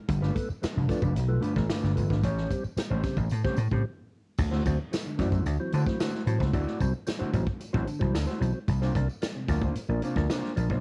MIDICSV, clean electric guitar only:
0, 0, Header, 1, 3, 480
1, 0, Start_track
1, 0, Tempo, 537153
1, 80, Time_signature, 4, 2, 24, 8
1, 9654, End_track
2, 0, Start_track
2, 0, Title_t, "Clean electric guitar"
2, 0, Program_c, 0, 27
2, 197, Note_on_c, 0, 71, 87
2, 199, Note_on_c, 0, 65, 81
2, 206, Note_on_c, 0, 62, 81
2, 211, Note_on_c, 0, 57, 78
2, 304, Note_off_c, 0, 57, 0
2, 305, Note_off_c, 0, 62, 0
2, 312, Note_off_c, 0, 65, 0
2, 318, Note_off_c, 0, 71, 0
2, 792, Note_on_c, 0, 57, 58
2, 798, Note_on_c, 0, 62, 73
2, 808, Note_on_c, 0, 65, 63
2, 814, Note_on_c, 0, 74, 75
2, 914, Note_off_c, 0, 74, 0
2, 917, Note_off_c, 0, 62, 0
2, 917, Note_off_c, 0, 65, 0
2, 918, Note_on_c, 0, 71, 64
2, 927, Note_on_c, 0, 62, 67
2, 928, Note_on_c, 0, 65, 57
2, 929, Note_off_c, 0, 57, 0
2, 940, Note_on_c, 0, 57, 51
2, 1023, Note_off_c, 0, 57, 0
2, 1027, Note_off_c, 0, 62, 0
2, 1028, Note_off_c, 0, 65, 0
2, 1032, Note_off_c, 0, 71, 0
2, 1258, Note_on_c, 0, 57, 89
2, 1265, Note_on_c, 0, 62, 85
2, 1268, Note_on_c, 0, 65, 82
2, 1271, Note_on_c, 0, 71, 93
2, 1381, Note_off_c, 0, 71, 0
2, 1386, Note_off_c, 0, 65, 0
2, 1392, Note_off_c, 0, 62, 0
2, 1456, Note_off_c, 0, 57, 0
2, 1511, Note_on_c, 0, 57, 82
2, 1516, Note_on_c, 0, 62, 85
2, 1523, Note_on_c, 0, 65, 92
2, 1525, Note_on_c, 0, 71, 78
2, 1703, Note_off_c, 0, 57, 0
2, 1705, Note_off_c, 0, 62, 0
2, 1709, Note_off_c, 0, 65, 0
2, 1710, Note_off_c, 0, 71, 0
2, 1869, Note_on_c, 0, 71, 59
2, 1875, Note_on_c, 0, 65, 62
2, 1878, Note_on_c, 0, 62, 59
2, 1888, Note_on_c, 0, 57, 53
2, 1976, Note_off_c, 0, 57, 0
2, 1987, Note_on_c, 0, 57, 81
2, 1993, Note_off_c, 0, 62, 0
2, 1996, Note_off_c, 0, 65, 0
2, 1996, Note_on_c, 0, 61, 89
2, 2000, Note_on_c, 0, 67, 89
2, 2002, Note_off_c, 0, 71, 0
2, 2006, Note_on_c, 0, 73, 86
2, 2213, Note_off_c, 0, 57, 0
2, 2217, Note_off_c, 0, 61, 0
2, 2219, Note_off_c, 0, 67, 0
2, 2222, Note_off_c, 0, 73, 0
2, 2594, Note_on_c, 0, 72, 101
2, 2601, Note_on_c, 0, 61, 86
2, 2603, Note_on_c, 0, 67, 89
2, 2612, Note_on_c, 0, 57, 70
2, 2708, Note_off_c, 0, 57, 0
2, 2712, Note_off_c, 0, 61, 0
2, 2716, Note_off_c, 0, 67, 0
2, 2720, Note_off_c, 0, 72, 0
2, 3074, Note_on_c, 0, 72, 97
2, 3085, Note_on_c, 0, 67, 84
2, 3088, Note_on_c, 0, 61, 81
2, 3096, Note_on_c, 0, 57, 66
2, 3190, Note_off_c, 0, 57, 0
2, 3196, Note_off_c, 0, 61, 0
2, 3199, Note_off_c, 0, 72, 0
2, 3201, Note_off_c, 0, 67, 0
2, 4031, Note_on_c, 0, 72, 91
2, 4038, Note_on_c, 0, 66, 81
2, 4040, Note_on_c, 0, 64, 81
2, 4047, Note_on_c, 0, 57, 82
2, 4139, Note_off_c, 0, 57, 0
2, 4141, Note_off_c, 0, 64, 0
2, 4147, Note_off_c, 0, 66, 0
2, 4150, Note_off_c, 0, 72, 0
2, 4627, Note_on_c, 0, 57, 64
2, 4633, Note_on_c, 0, 64, 60
2, 4639, Note_on_c, 0, 66, 75
2, 4642, Note_on_c, 0, 74, 75
2, 4742, Note_off_c, 0, 66, 0
2, 4742, Note_off_c, 0, 74, 0
2, 4746, Note_off_c, 0, 64, 0
2, 4746, Note_on_c, 0, 72, 53
2, 4750, Note_off_c, 0, 57, 0
2, 4752, Note_on_c, 0, 66, 52
2, 4756, Note_on_c, 0, 64, 51
2, 4761, Note_on_c, 0, 57, 49
2, 4865, Note_off_c, 0, 57, 0
2, 4869, Note_off_c, 0, 64, 0
2, 4872, Note_off_c, 0, 66, 0
2, 4879, Note_off_c, 0, 72, 0
2, 5125, Note_on_c, 0, 57, 78
2, 5126, Note_on_c, 0, 64, 90
2, 5138, Note_on_c, 0, 66, 99
2, 5142, Note_on_c, 0, 72, 93
2, 5227, Note_off_c, 0, 72, 0
2, 5235, Note_off_c, 0, 66, 0
2, 5239, Note_off_c, 0, 64, 0
2, 5308, Note_off_c, 0, 57, 0
2, 5356, Note_on_c, 0, 57, 76
2, 5366, Note_on_c, 0, 64, 82
2, 5372, Note_on_c, 0, 66, 103
2, 5377, Note_on_c, 0, 72, 82
2, 5543, Note_off_c, 0, 57, 0
2, 5548, Note_off_c, 0, 64, 0
2, 5552, Note_off_c, 0, 66, 0
2, 5554, Note_off_c, 0, 72, 0
2, 5706, Note_on_c, 0, 72, 66
2, 5715, Note_on_c, 0, 66, 58
2, 5718, Note_on_c, 0, 57, 48
2, 5718, Note_on_c, 0, 64, 50
2, 5819, Note_off_c, 0, 57, 0
2, 5827, Note_off_c, 0, 64, 0
2, 5828, Note_off_c, 0, 66, 0
2, 5830, Note_on_c, 0, 57, 85
2, 5838, Note_on_c, 0, 64, 98
2, 5838, Note_on_c, 0, 66, 98
2, 5842, Note_off_c, 0, 72, 0
2, 5845, Note_on_c, 0, 74, 87
2, 6053, Note_off_c, 0, 57, 0
2, 6057, Note_off_c, 0, 64, 0
2, 6057, Note_off_c, 0, 66, 0
2, 6061, Note_off_c, 0, 74, 0
2, 6424, Note_on_c, 0, 72, 103
2, 6426, Note_on_c, 0, 66, 84
2, 6433, Note_on_c, 0, 64, 86
2, 6437, Note_on_c, 0, 57, 73
2, 6531, Note_off_c, 0, 57, 0
2, 6536, Note_off_c, 0, 64, 0
2, 6541, Note_off_c, 0, 66, 0
2, 6545, Note_off_c, 0, 72, 0
2, 6909, Note_on_c, 0, 72, 95
2, 6912, Note_on_c, 0, 66, 86
2, 6918, Note_on_c, 0, 64, 88
2, 6923, Note_on_c, 0, 57, 75
2, 7016, Note_off_c, 0, 57, 0
2, 7021, Note_off_c, 0, 66, 0
2, 7022, Note_off_c, 0, 64, 0
2, 7024, Note_off_c, 0, 72, 0
2, 7389, Note_on_c, 0, 72, 77
2, 7397, Note_on_c, 0, 64, 67
2, 7399, Note_on_c, 0, 66, 74
2, 7404, Note_on_c, 0, 57, 69
2, 7499, Note_off_c, 0, 57, 0
2, 7503, Note_off_c, 0, 64, 0
2, 7511, Note_off_c, 0, 66, 0
2, 7511, Note_off_c, 0, 72, 0
2, 7880, Note_on_c, 0, 72, 94
2, 7883, Note_on_c, 0, 65, 89
2, 7885, Note_on_c, 0, 62, 91
2, 7889, Note_on_c, 0, 58, 71
2, 7989, Note_off_c, 0, 62, 0
2, 7990, Note_off_c, 0, 58, 0
2, 7994, Note_off_c, 0, 65, 0
2, 8000, Note_off_c, 0, 72, 0
2, 8482, Note_on_c, 0, 58, 69
2, 8491, Note_on_c, 0, 62, 70
2, 8496, Note_on_c, 0, 65, 63
2, 8504, Note_on_c, 0, 74, 76
2, 8601, Note_off_c, 0, 65, 0
2, 8607, Note_off_c, 0, 74, 0
2, 8608, Note_off_c, 0, 62, 0
2, 8610, Note_on_c, 0, 72, 62
2, 8612, Note_off_c, 0, 58, 0
2, 8612, Note_on_c, 0, 65, 61
2, 8619, Note_on_c, 0, 62, 53
2, 8623, Note_on_c, 0, 58, 52
2, 8715, Note_off_c, 0, 58, 0
2, 8715, Note_off_c, 0, 62, 0
2, 8723, Note_off_c, 0, 72, 0
2, 8724, Note_off_c, 0, 65, 0
2, 8957, Note_on_c, 0, 58, 83
2, 8968, Note_on_c, 0, 65, 100
2, 8969, Note_on_c, 0, 62, 88
2, 8975, Note_on_c, 0, 72, 84
2, 9077, Note_off_c, 0, 72, 0
2, 9082, Note_off_c, 0, 62, 0
2, 9083, Note_off_c, 0, 65, 0
2, 9146, Note_off_c, 0, 58, 0
2, 9201, Note_on_c, 0, 58, 85
2, 9204, Note_on_c, 0, 62, 96
2, 9210, Note_on_c, 0, 65, 87
2, 9219, Note_on_c, 0, 72, 96
2, 9388, Note_off_c, 0, 58, 0
2, 9390, Note_off_c, 0, 62, 0
2, 9393, Note_off_c, 0, 65, 0
2, 9398, Note_off_c, 0, 72, 0
2, 9567, Note_on_c, 0, 72, 67
2, 9573, Note_on_c, 0, 65, 58
2, 9578, Note_on_c, 0, 62, 53
2, 9583, Note_on_c, 0, 58, 60
2, 9654, Note_off_c, 0, 58, 0
2, 9654, Note_off_c, 0, 62, 0
2, 9654, Note_off_c, 0, 65, 0
2, 9654, Note_off_c, 0, 72, 0
2, 9654, End_track
3, 0, Start_track
3, 0, Title_t, "Muted clean electric guitar strokes"
3, 80, Note_on_c, 9, 29, 45
3, 170, Note_off_c, 9, 29, 0
3, 315, Note_on_c, 9, 29, 34
3, 404, Note_off_c, 9, 29, 0
3, 430, Note_on_c, 9, 29, 51
3, 519, Note_off_c, 9, 29, 0
3, 551, Note_on_c, 9, 29, 35
3, 640, Note_off_c, 9, 29, 0
3, 669, Note_on_c, 9, 29, 58
3, 759, Note_off_c, 9, 29, 0
3, 1034, Note_on_c, 9, 29, 38
3, 1123, Note_off_c, 9, 29, 0
3, 1149, Note_on_c, 9, 29, 45
3, 1238, Note_off_c, 9, 29, 0
3, 1392, Note_on_c, 9, 29, 45
3, 1481, Note_off_c, 9, 29, 0
3, 1757, Note_on_c, 9, 29, 53
3, 1847, Note_off_c, 9, 29, 0
3, 2352, Note_on_c, 9, 29, 46
3, 2441, Note_off_c, 9, 29, 0
3, 2471, Note_on_c, 9, 29, 44
3, 2560, Note_off_c, 9, 29, 0
3, 2718, Note_on_c, 9, 29, 38
3, 2808, Note_off_c, 9, 29, 0
3, 2829, Note_on_c, 9, 29, 53
3, 2919, Note_off_c, 9, 29, 0
3, 2950, Note_on_c, 9, 29, 53
3, 3040, Note_off_c, 9, 29, 0
3, 3201, Note_on_c, 9, 29, 39
3, 3290, Note_off_c, 9, 29, 0
3, 3324, Note_on_c, 9, 29, 37
3, 3414, Note_off_c, 9, 29, 0
3, 3919, Note_on_c, 9, 29, 44
3, 4008, Note_off_c, 9, 29, 0
3, 4150, Note_on_c, 9, 29, 42
3, 4239, Note_off_c, 9, 29, 0
3, 4280, Note_on_c, 9, 29, 42
3, 4369, Note_off_c, 9, 29, 0
3, 4385, Note_on_c, 9, 29, 40
3, 4474, Note_off_c, 9, 29, 0
3, 4509, Note_on_c, 9, 29, 48
3, 4599, Note_off_c, 9, 29, 0
3, 4876, Note_on_c, 9, 29, 55
3, 4965, Note_off_c, 9, 29, 0
3, 5002, Note_on_c, 9, 29, 47
3, 5091, Note_off_c, 9, 29, 0
3, 5237, Note_on_c, 9, 29, 48
3, 5327, Note_off_c, 9, 29, 0
3, 5605, Note_on_c, 9, 29, 37
3, 5695, Note_off_c, 9, 29, 0
3, 6178, Note_on_c, 9, 29, 46
3, 6267, Note_off_c, 9, 29, 0
3, 6315, Note_on_c, 9, 29, 42
3, 6404, Note_off_c, 9, 29, 0
3, 6542, Note_on_c, 9, 29, 46
3, 6631, Note_off_c, 9, 29, 0
3, 6675, Note_on_c, 9, 29, 48
3, 6764, Note_off_c, 9, 29, 0
3, 6791, Note_on_c, 9, 29, 47
3, 6880, Note_off_c, 9, 29, 0
3, 7026, Note_on_c, 9, 29, 36
3, 7116, Note_off_c, 9, 29, 0
3, 7144, Note_on_c, 9, 29, 55
3, 7234, Note_off_c, 9, 29, 0
3, 7262, Note_on_c, 9, 29, 47
3, 7351, Note_off_c, 9, 29, 0
3, 7509, Note_on_c, 9, 29, 39
3, 7599, Note_off_c, 9, 29, 0
3, 7633, Note_on_c, 9, 29, 52
3, 7722, Note_off_c, 9, 29, 0
3, 7758, Note_on_c, 9, 29, 43
3, 7847, Note_off_c, 9, 29, 0
3, 7999, Note_on_c, 9, 29, 48
3, 8089, Note_off_c, 9, 29, 0
3, 8112, Note_on_c, 9, 29, 45
3, 8201, Note_off_c, 9, 29, 0
3, 8243, Note_on_c, 9, 29, 35
3, 8332, Note_off_c, 9, 29, 0
3, 8356, Note_on_c, 9, 29, 60
3, 8445, Note_off_c, 9, 29, 0
3, 8725, Note_on_c, 9, 29, 46
3, 8815, Note_off_c, 9, 29, 0
3, 8856, Note_on_c, 9, 29, 47
3, 8945, Note_off_c, 9, 29, 0
3, 9087, Note_on_c, 9, 29, 46
3, 9177, Note_off_c, 9, 29, 0
3, 9450, Note_on_c, 9, 29, 44
3, 9539, Note_off_c, 9, 29, 0
3, 9654, End_track
0, 0, End_of_file